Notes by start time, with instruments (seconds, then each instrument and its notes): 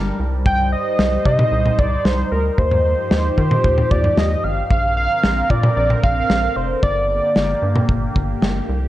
Already playing: analog synth bass G1, analog synth pad G3 D4 A#4, analog synth lead A#4
0.19 analog synth bass C2, analog synth pad D#4 C5
0.46 analog synth lead G5, kick
0.73 analog synth lead D#5
0.99 analog synth bass C2, snare
1.25 analog synth bass C3, analog synth lead D#5, kick
1.39 mid tom
1.52 analog synth bass C2
1.66 mid tom
1.79 analog synth bass C2, analog synth lead D5, kick
2.05 analog synth bass C2, analog synth lead C5, snare
2.32 analog synth bass D2, analog synth lead A#4
2.58 analog synth bass D#2, analog synth pad F3 G4, analog synth lead C5, kick
2.71 mid tom
2.85 analog synth lead C5
3.11 analog synth bass D#2, snare
3.38 analog synth bass D#3, kick
3.51 mid tom
3.64 analog synth bass D#2, kick
3.78 mid tom
3.91 analog synth bass D#2, analog synth lead D5, kick
4.04 mid tom
4.17 analog synth bass D#2, analog synth lead D#5, snare
4.44 analog synth bass G#1, analog synth lead F5
4.70 analog synth bass A#1, analog synth pad D3 C4 A#4, analog synth lead F5, kick
4.97 analog synth lead F5
5.23 analog synth bass A#1, snare
5.50 analog synth bass A#2, analog synth lead D5, kick
5.63 mid tom
5.77 analog synth bass A#1, analog synth lead D5
5.90 mid tom
6.03 analog synth bass A#1, analog synth lead F5, kick
6.30 analog synth bass A#1, snare
6.56 analog synth bass F1, analog synth lead C5
6.83 analog synth bass G1, analog synth pad A#3 G4, analog synth lead D5, kick
7.09 analog synth lead D5
7.36 analog synth bass G1, snare
7.62 analog synth bass G2
7.76 mid tom
7.89 analog synth bass G1, kick
8.16 analog synth bass G1, kick
8.42 analog synth bass G1, snare
8.69 analog synth bass C2, analog synth pad D#3 C4